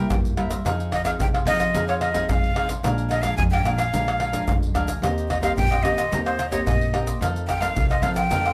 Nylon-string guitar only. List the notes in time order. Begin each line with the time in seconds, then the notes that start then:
Already playing: G3 A#3 E4
0.12 G2
0.37 G3 A#3 E4
0.66 F3 C4 D#4 G#4
1.05 C4 D#4 G#4
1.20 C3
1.47 C4 D#4 G#4
1.75 F3 C4 D#4 G#4
2.14 C4 D#4 G#4
2.29 C3
2.56 C4 D#4 G#4
2.84 A#2 F3 G#3 D4
3.24 F3 G#3 D4
3.39 F2
3.65 F3 G#3 D4
3.93 A#2 F3 G#3 D4
4.32 F3 G#3 D4
4.47 F2
4.74 F3 G#3 D4
5.02 D#3 A#3 C4 G4
5.41 A#3 C4 G4
5.57 A#2
5.84 A#3 C4 G4
6.11 D#3 A#3 C4 G4
6.51 A#3 C4 G4
6.66 A#2
6.92 A#3 C4 G4
7.21 F2 D#3 A3 C4
7.61 D#3 A3 C4
7.76 C3
8.02 D#3 A3 C4
8.29 F2 D#3 A3 C4